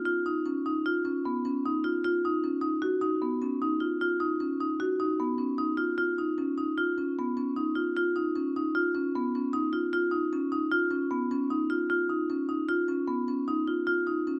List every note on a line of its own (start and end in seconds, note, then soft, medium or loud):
0.05 0.23 F4 medium
0.26 0.43 D#4 medium
0.46 0.63 C#4 medium
0.66 0.83 D#4 medium
0.86 1.02 F4 medium
1.05 1.22 C#4 medium
1.25 1.42 B3 medium
1.45 1.62 C#4 medium
1.65 1.82 D#4 medium
1.84 2.01 F4 medium
2.05 2.21 F4 medium
2.25 2.41 D#4 medium
2.44 2.60 C#4 medium
2.61 2.79 D#4 medium
2.82 2.99 F#4 medium
3.01 3.19 D#4 medium
3.22 3.39 B3 medium
3.42 3.59 C#4 medium
3.62 3.78 D#4 medium
3.80 3.98 F4 medium
4.01 4.18 F4 medium
4.20 4.37 D#4 medium
4.40 4.57 C#4 medium
4.60 4.77 D#4 medium
4.80 4.97 F#4 medium
5.00 5.17 D#4 medium
5.20 5.36 B3 medium
5.38 5.55 C#4 medium
5.58 5.75 D#4 medium
5.77 5.95 F4 medium
5.98 6.15 F4 medium
6.18 6.35 D#4 medium
6.38 6.55 C#4 medium
6.58 6.74 D#4 medium
6.78 6.94 F4 medium
6.98 7.14 C#4 medium
7.19 7.35 B3 medium
7.37 7.53 C#4 medium
7.56 7.73 D#4 medium
7.75 7.92 F4 medium
7.96 8.13 F4 medium
8.16 8.32 D#4 medium
8.35 8.52 C#4 medium
8.56 8.72 D#4 medium
8.75 8.91 F4 medium
8.95 9.11 C#4 medium
9.15 9.31 B3 medium
9.35 9.51 C#4 medium
9.53 9.70 D#4 medium
9.73 9.90 F4 medium
9.93 10.09 F4 medium
10.11 10.28 D#4 medium
10.33 10.49 C#4 medium
10.52 10.69 D#4 medium
10.72 10.88 F4 medium
10.91 11.08 C#4 medium
11.11 11.28 B3 medium
11.31 11.48 C#4 medium
11.50 11.67 D#4 medium
11.70 11.87 F4 medium
11.90 12.07 F4 medium
12.10 12.26 D#4 medium
12.30 12.46 C#4 medium
12.49 12.65 D#4 medium
12.68 12.85 F4 medium
12.88 13.05 C#4 medium
13.08 13.25 B3 medium
13.28 13.45 C#4 medium
13.48 13.64 D#4 medium
13.67 13.84 F4 medium
13.87 14.04 F4 medium
14.07 14.24 D#4 medium
14.27 14.39 C#4 medium